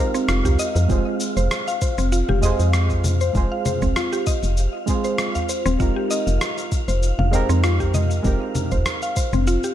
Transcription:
0.00 0.88 G#3 medium
0.00 0.89 C4 medium
0.00 0.92 D#4 medium
0.00 9.74 F4 medium
0.00 0.93 G4 medium
0.00 0.92 A#4 medium
0.00 0.13 C5 medium
0.00 9.74 F5 medium
0.14 0.28 C4 loud
0.14 cabasa soft
0.29 0.42 F1 medium
0.29 0.38 F4 loud
0.29 cross-stick medium
0.29 cabasa soft
0.45 0.57 C2 medium
0.45 0.53 G4 medium
0.45 udu loud
0.45 cabasa soft
0.59 0.90 D#5 loud
0.59 cabasa medium
0.76 0.87 F2 loud
0.76 cabasa soft
0.88 1.03 F1 loud
0.88 2.39 G#3 medium
0.88 2.39 C4 medium
0.88 2.40 F4 medium
0.88 2.40 G#4 medium
0.88 kick loud
0.88 cabasa soft
0.92 2.41 C5 medium
1.20 cabasa medium
1.37 1.49 F1 loud
1.37 1.50 C5 medium
1.37 cabasa soft
1.51 cross-stick medium
1.51 cabasa soft
1.68 1.81 F5 medium
1.68 cabasa soft
1.82 1.97 C5 medium
1.82 kick loud
1.82 cabasa medium
1.98 2.23 F1 medium
1.98 2.12 C4 loud
1.98 cabasa soft
2.12 2.22 F4 loud
2.12 cabasa soft
2.29 2.54 F1 medium
2.29 2.37 G4 medium
2.29 low conga medium
2.41 3.31 G#3 medium
2.41 3.31 C4 medium
2.41 3.32 F4 medium
2.41 3.32 G#4 medium
2.41 3.03 D#5 loud
2.41 udu medium
2.41 cabasa medium
2.45 3.33 C5 medium
2.60 3.31 F2 medium
2.60 cabasa soft
2.73 cross-stick medium
2.73 cabasa soft
2.90 kick medium
2.90 cabasa soft
3.04 low conga medium
3.04 cabasa medium
3.21 3.34 C5 medium
3.21 cabasa soft
3.33 3.48 F1 medium
3.33 4.84 G#3 medium
3.33 4.84 C4 medium
3.33 4.85 F4 medium
3.33 4.85 G#4 medium
3.33 kick loud
3.33 cabasa soft
3.37 4.86 C5 medium
3.52 3.65 F5 medium
3.66 3.81 C5 medium
3.66 low conga medium
3.66 cabasa medium
3.82 3.94 F1 loud
3.82 3.96 C4 medium
3.82 kick medium
3.82 udu medium
3.82 cabasa soft
3.96 4.06 F4 loud
3.96 cross-stick medium
3.96 cabasa soft
4.13 4.21 G4 medium
4.13 cabasa soft
4.27 4.87 D#5 loud
4.27 kick loud
4.27 cabasa medium
4.43 4.68 F1 medium
4.43 cabasa soft
4.57 cabasa soft
4.86 5.75 G#3 medium
4.86 5.76 C4 medium
4.86 5.77 F4 medium
4.86 5.77 G#4 medium
4.86 5.77 C5 medium
4.86 kick medium
4.86 cabasa medium
5.04 5.18 C5 medium
5.04 cabasa soft
5.18 cross-stick medium
5.18 cabasa soft
5.35 5.49 F5 medium
5.35 udu medium
5.35 cabasa soft
5.49 5.64 C5 medium
5.49 cabasa medium
5.66 5.77 D#1 medium
5.66 5.79 C4 loud
5.66 cabasa soft
5.78 5.93 F1 loud
5.78 7.29 G#3 medium
5.78 7.29 C4 medium
5.78 7.30 D#4 medium
5.78 5.89 F4 loud
5.78 7.30 G4 medium
5.78 7.31 A#4 medium
5.78 kick loud
5.78 cabasa soft
5.96 6.04 G4 medium
6.11 6.70 D#5 loud
6.11 cabasa medium
6.27 6.39 F1 loud
6.27 cabasa soft
6.41 cross-stick medium
6.41 cabasa soft
6.58 cabasa soft
6.72 kick loud
6.72 cabasa medium
6.88 7.13 F1 medium
6.88 7.02 C5 medium
6.88 cabasa soft
7.03 cabasa soft
7.19 7.43 F1 medium
7.19 7.32 F5 medium
7.19 low conga medium
7.31 8.20 G#3 medium
7.31 8.21 C4 medium
7.31 8.22 D#4 medium
7.31 8.22 G4 medium
7.31 7.48 C5 medium
7.31 udu medium
7.31 cabasa medium
7.35 8.23 A#4 medium
7.49 8.21 F2 medium
7.49 7.63 C4 loud
7.49 cabasa soft
7.64 7.73 F4 loud
7.64 cross-stick medium
7.64 cabasa soft
7.80 7.88 G4 medium
7.80 kick medium
7.80 cabasa soft
7.94 8.54 D#5 loud
7.94 low conga medium
7.94 cabasa medium
8.11 cabasa soft
8.23 8.38 F1 loud
8.23 9.73 G#3 medium
8.23 9.74 C4 medium
8.23 9.74 D#4 medium
8.23 9.74 G4 medium
8.23 9.74 A#4 medium
8.23 kick loud
8.23 cabasa soft
8.55 low conga medium
8.55 cabasa medium
8.72 8.83 F1 medium
8.72 8.85 C5 medium
8.72 kick medium
8.72 udu medium
8.72 cabasa soft
8.86 cross-stick loud
8.86 cabasa soft
9.02 9.16 F5 medium
9.02 cabasa soft
9.17 9.31 C5 medium
9.17 kick loud
9.17 cabasa medium
9.33 9.58 F1 loud
9.33 9.47 C4 medium
9.33 low conga medium
9.33 cabasa soft
9.47 9.57 F4 loud
9.47 cabasa soft
9.64 9.72 G4 medium
9.64 cabasa soft

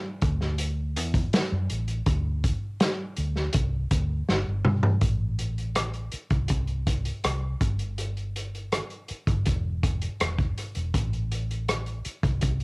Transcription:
0.22 0.97 D2 loud
0.22 kick loud
0.22 closed hi-hat medium
0.41 snare soft
0.58 closed hi-hat medium
0.96 1.26 E2 medium
0.96 closed hi-hat loud
1.14 kick medium
1.14 closed hi-hat medium
1.33 snare loud
1.33 closed hi-hat medium
1.52 1.67 F#2 medium
1.70 2.00 A1 medium
1.70 closed hi-hat medium
1.88 closed hi-hat medium
2.06 2.51 D2 loud
2.06 kick loud
2.06 closed hi-hat medium
2.44 kick medium
2.44 closed hi-hat medium
2.80 snare loud
2.80 closed hi-hat medium
3.17 3.48 D2 medium
3.17 closed hi-hat medium
3.36 snare soft
3.53 3.84 C2 loud
3.53 kick medium
3.53 closed hi-hat medium
3.91 4.21 D2 medium
3.91 kick medium
3.91 closed hi-hat medium
4.29 4.44 G1 medium
4.29 snare medium
4.48 4.62 G1 medium
4.65 4.96 G2 medium
4.65 mid tom medium
4.83 floor tom medium
5.01 6.09 A1 medium
5.01 kick medium
5.01 closed hi-hat medium
5.39 closed hi-hat medium
5.58 closed hi-hat soft
5.75 cross-stick loud
5.75 closed hi-hat medium
5.94 closed hi-hat soft
6.12 muted fingered electric bass stroke soft
6.12 closed hi-hat medium
6.30 6.46 C2 medium
6.30 kick medium
6.30 cross-stick soft
6.30 closed hi-hat soft
6.48 7.10 C2 medium
6.48 kick medium
6.48 closed hi-hat medium
6.67 closed hi-hat soft
6.87 kick medium
6.87 closed hi-hat medium
7.05 closed hi-hat medium
7.24 7.54 C2 medium
7.24 cross-stick loud
7.24 closed hi-hat medium
7.61 8.80 G1 medium
7.61 kick medium
7.61 closed hi-hat medium
7.79 closed hi-hat soft
7.98 closed hi-hat medium
8.17 closed hi-hat soft
8.36 closed hi-hat medium
8.55 closed hi-hat soft
8.72 cross-stick loud
8.72 closed hi-hat medium
8.90 closed hi-hat soft
9.08 muted fingered electric bass stroke soft
9.08 closed hi-hat medium
9.27 9.42 G1 medium
9.27 kick medium
9.27 cross-stick soft
9.27 closed hi-hat soft
9.46 10.06 E1 loud
9.46 kick medium
9.46 closed hi-hat medium
9.83 kick medium
9.83 closed hi-hat medium
10.02 closed hi-hat medium
10.20 10.50 E1 medium
10.20 cross-stick loud
10.20 closed hi-hat medium
10.38 kick medium
10.38 closed hi-hat soft
10.58 cross-stick soft
10.58 closed hi-hat medium
10.75 10.91 E1 medium
10.75 closed hi-hat medium
10.94 12.01 A1 medium
10.94 kick medium
10.94 closed hi-hat medium
11.13 closed hi-hat soft
11.32 closed hi-hat medium
11.51 closed hi-hat soft
11.68 cross-stick medium
11.68 closed hi-hat medium
11.86 closed hi-hat soft
12.05 muted fingered electric bass stroke soft
12.05 closed hi-hat medium
12.23 12.38 C2 medium
12.23 kick medium
12.23 closed hi-hat medium
12.41 12.64 C2 medium
12.41 kick medium
12.41 closed hi-hat medium
12.60 closed hi-hat soft

